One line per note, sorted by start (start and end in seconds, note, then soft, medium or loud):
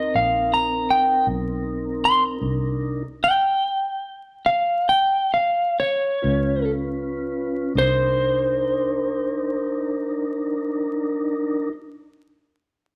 0.00 0.10 D2 medium
0.00 2.38 C4 medium
0.00 2.38 D#4 medium
0.00 2.38 A#4 medium
0.00 0.14 D#5 medium
0.15 1.24 A#1 medium
0.15 0.51 F5 medium
0.54 0.89 A#5 medium
0.90 1.26 G5 medium
1.27 2.38 B1 medium
2.05 2.23 C6 loud
2.39 3.02 C2 medium
2.39 3.03 D4 medium
2.39 3.02 D#4 medium
2.39 3.03 A#4 medium
3.24 4.42 G5 medium
4.46 4.87 F5 medium
4.89 5.31 G5 medium
5.34 5.77 F5 medium
5.80 6.71 C#5 medium
6.22 7.71 C#2 medium
6.22 7.74 C#4 medium
6.22 7.73 F4 medium
6.22 7.73 B4 medium
7.75 11.69 C2 medium
7.75 11.69 D4 medium
7.75 11.70 D#4 medium
7.75 11.69 A#4 medium
7.75 11.72 C5 medium